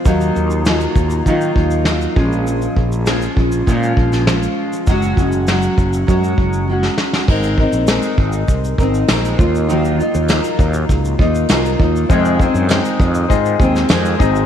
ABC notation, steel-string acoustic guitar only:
X:1
M:4/4
L:1/8
Q:1/4=100
K:Ebdor
V:1 name="Steel-string acoustic guitar"
[E,G,B,EF]2 [G,B,EF]2 [E,G,B,EF]2 [G,B,EF] [B,,F,A,DF]- | [B,,F,A,DF]2 [F,A,DF] [A,DF] [B,,F,A,DF]2 [F,A,DF]2 | [G,A,DG] [A,DG] [G,A,DG]2 [G,A,DG]2 [G,A,DG]2 | [A,CEB] [CEB] [A,CEB]3 [CEB] [A,CEB] [B,EF] |
[E,G,B,EF] [B,EF] [G,B,EF]3 [B,EF] [G,B,EF] [B,EF] | [F,,C,E,A,CA] [E,A,CA] [E,A,CA]3 [E,A,CA] [E,A,CA] [A,CEA] |]